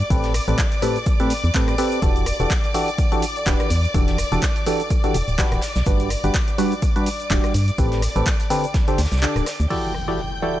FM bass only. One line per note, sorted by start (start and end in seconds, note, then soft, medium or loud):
0.10 0.40 A1 loud
0.48 0.55 A1 medium
1.44 1.51 E2 medium
2.02 2.32 E1 loud
2.40 2.47 E1 medium
3.46 3.55 D1 medium
3.70 3.87 E2 medium
3.94 4.24 E1 loud
4.32 4.39 E1 medium
5.14 5.23 E1 medium
5.28 5.42 D1 medium
5.52 5.59 D1 medium
5.76 5.83 B1 medium
5.86 6.16 G1 loud
6.24 6.31 G1 medium
7.30 7.39 D1 medium
7.54 7.71 G2 medium
7.78 8.08 A1 loud
8.16 8.23 A1 medium
8.98 9.07 D2 medium
9.12 9.26 C2 medium
9.36 9.43 D1 medium
9.60 9.67 D2 loud